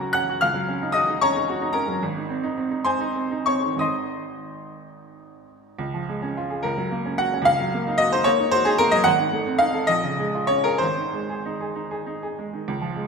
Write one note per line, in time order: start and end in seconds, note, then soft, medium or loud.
0.00 0.39 C#2 soft
0.00 0.45 F#3 soft
0.00 0.15 C#4 soft
0.00 0.23 F#4 soft
0.00 0.10 A#4 medium
0.00 0.14 F#5 medium
0.00 0.13 A#5 medium
0.13 0.37 C#4 soft
0.13 0.40 F#5 medium
0.13 0.41 F#6 loud
0.29 0.42 F#4 soft
0.41 1.97 C#2 medium
0.41 0.91 F5 medium
0.41 0.94 F6 loud
0.54 0.76 F#3 soft
0.68 0.90 C#4 medium
0.82 1.03 D#4 medium
0.92 1.16 F#4 medium
0.92 1.19 D#5 medium
0.92 1.20 D#6 loud
1.09 1.30 D#4 medium
1.21 1.43 C#4 soft
1.21 1.71 C#5 medium
1.21 1.71 A#5 medium
1.21 1.74 C#6 loud
1.36 1.56 D#4 medium
1.49 1.70 F#4 medium
1.62 1.83 D#4 medium
1.73 1.96 C#4 medium
1.73 1.99 A#4 medium
1.73 2.00 A#5 medium
1.88 2.01 F#3 medium
2.03 3.74 G#1 medium
2.17 2.38 D#3 soft
2.29 2.51 C4 soft
2.43 2.65 D#4 medium
2.57 2.79 C4 medium
2.71 2.94 D#4 soft
2.85 3.09 C4 medium
2.85 3.43 C5 medium
2.85 3.43 G#5 medium
2.85 3.46 C6 medium
3.00 3.24 D#4 medium
3.15 3.40 C4 soft
3.31 3.57 D#4 soft
3.46 3.73 C4 soft
3.46 3.78 C#5 medium
3.46 3.80 C#6 medium
3.64 3.75 D#3 soft
3.76 5.72 G#1 soft
3.76 5.72 D#3 soft
3.76 5.73 C4 soft
3.76 5.73 D#4 soft
3.76 5.46 D#6 medium
3.80 5.42 D#5 medium
3.80 5.43 C6 medium
5.79 6.63 C#2 medium
5.94 6.17 F3 soft
6.09 6.32 G#3 soft
6.22 6.45 C#4 soft
6.37 6.60 F4 medium
6.50 6.65 G#4 soft
6.63 7.40 C#2 medium
6.63 7.19 A#4 medium
6.78 7.00 F#3 soft
6.91 7.14 A#3 medium
7.06 7.28 C#4 soft
7.18 7.42 F#4 medium
7.18 7.47 F#5 loud
7.34 7.48 C#4 medium
7.42 8.99 C#2 medium
7.42 7.99 F5 loud
7.60 7.82 F#3 soft
7.74 7.95 A#3 medium
7.87 8.08 D#4 medium
7.98 8.21 F#4 medium
7.98 8.12 D#5 loud
8.12 8.34 D#4 medium
8.12 8.26 C5 loud
8.24 8.48 A#3 medium
8.24 8.52 C#5 loud
8.39 8.61 D#4 medium
8.51 8.75 F#4 medium
8.51 8.66 C5 loud
8.65 8.87 D#4 medium
8.65 8.79 G#4 loud
8.78 9.01 A#3 medium
8.78 8.92 A#4 loud
8.91 9.06 F#3 medium
8.91 9.05 D#5 loud
9.04 9.86 G#1 medium
9.04 9.59 F#5 loud
9.19 9.40 D#3 medium
9.32 9.54 A3 medium
9.46 9.68 C4 medium
9.59 9.83 D#4 medium
9.59 9.88 F5 loud
9.74 9.89 A4 medium
9.87 10.78 A#1 medium
9.87 10.49 D#5 loud
10.04 10.28 C#3 medium
10.19 10.43 G#3 medium
10.35 10.59 F4 medium
10.47 10.74 C#4 medium
10.47 10.64 C#5 loud
10.64 10.81 G#4 medium
10.64 10.80 A#4 medium
10.78 12.63 G#1 medium
10.78 12.36 C5 medium
10.97 11.23 D#3 soft
11.13 11.39 G#3 soft
11.29 11.54 G#4 soft
11.45 11.70 D#4 soft
11.61 11.85 G#4 soft
11.75 12.00 D#4 soft
11.91 12.16 G#4 soft
12.07 12.31 D#4 soft
12.23 12.47 G#4 soft
12.39 12.62 G#3 soft
12.53 12.67 D#3 soft
12.68 13.07 C#2 medium
12.81 13.04 F3 soft
12.96 13.07 G#3 soft